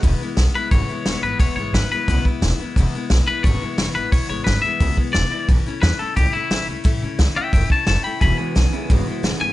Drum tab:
HH |o-o-o-o-|o-o-o-o-|o-o-o-o-|o-o-o-o-|
SD |--o---o-|--o---o-|--o---o-|--o---o-|
BD |o---o---|o---oo--|o---o---|o---oo--|

HH |o-o-o-o-|o-o-o-o-|o-o-o-o-|
SD |--o---o-|--o---o-|--o---o-|
BD |o---o---|o---oo--|o---o---|